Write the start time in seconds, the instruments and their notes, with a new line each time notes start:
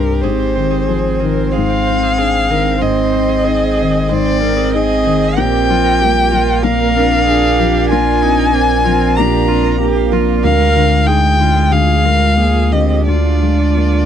Already playing: felt piano C2 G2 C4 D4, sub bass C2, ambient pad C4 G4 C5, cello C4, harp C4 D#4 C5, viola G4, violin A#4
0.08 harp G4
0.21 sub bass G#1, felt piano G#2, ambient pad C4 C5 G5, cello C4, harp G#4, violin C5
0.40 harp C5
0.55 felt piano D#3, harp C5
0.71 harp G#4
0.87 felt piano F3, viola G#4, harp C5
1.20 felt piano D#3, harp G#4, viola A#4
1.52 harp G#4, viola C5, violin F5
1.57 felt piano G#2
1.70 harp G5
1.87 felt piano C4, harp C5
2.03 harp G#4
2.18 felt piano D4, viola G#4, harp G5
2.50 felt piano D#3, harp G#4, viola A#4
2.81 felt piano G#2, harp G#4, viola C5, violin D#5
2.96 harp C5
3.13 felt piano C4, harp C5
3.29 harp G#4
3.45 felt piano D#4, viola G#4, harp C5
3.77 harp G#4
3.81 felt piano D#3
4.09 felt piano G#2, harp G#4, viola C5
4.13 violin D5
4.25 harp G5
4.41 felt piano C4, viola A#4, harp C5
4.56 harp G#4
4.73 felt piano D#4, viola G#4, violin D#5, harp G5
4.89 harp D#5
5.04 felt piano D#3, harp G#4
5.21 harp D#5
5.37 sub bass A#1, felt piano A#2, cello C4, ambient pad C4 F4 D5, viola G4, harp A#4, violin G5
5.52 harp D6
5.70 felt piano F3, viola F4
5.84 harp A#4
6.01 felt piano G3, cello A#3, viola G4
6.31 felt piano F3, viola F4, harp A#4
6.47 harp F5
6.63 felt piano A#2, cello A#3, viola A#4, harp A#4, violin F5
6.80 harp A#5
6.96 felt piano C4, cello D4
7.12 harp A#4
7.27 felt piano D4, viola G#4, harp A#5
7.43 harp F5
7.59 felt piano F3, viola G4, harp A#4
7.76 harp F5
7.90 felt piano A#2, viola F4, harp A#4, violin G#5
8.22 felt piano C4, viola D#4
8.39 harp A#4
8.54 cello C4, viola D4, felt piano D4
8.85 felt piano F3, cello C4, viola F4, harp A#4
9.01 harp F5
9.17 felt piano A#2, cello D4, viola G4, harp A#4, violin A#5
9.33 harp A#5
9.48 felt piano C4, viola F4
9.64 harp A#4
9.80 cello A#3, felt piano D4, viola G4, harp A#5
9.96 harp F5
10.12 felt piano F3, viola F4, harp A#4
10.28 harp F5
10.42 felt piano D2, sub bass D2, ambient pad G#3 F4 F5, cello G#3, viola A#4, violin F5
10.60 harp F4
10.75 felt piano D3, cello G#3, harp F4
11.06 felt piano D#4, harp F4, viola G#4, violin G5
11.39 felt piano D3, viola F4
11.56 harp G#4
11.71 felt piano D2, viola G#4, violin F5
12.05 felt piano G#3, harp F4, viola A#4
12.37 felt piano A#3, cello A#3, viola G#4
12.56 harp G#4
12.72 felt piano D3, cello C4, viola G4, violin D#5
12.90 harp G#4
13.07 felt piano D2, cello D4, viola F4, violin D5
13.25 harp F4
13.42 felt piano G#3, harp F4
13.77 felt piano A#3, harp F4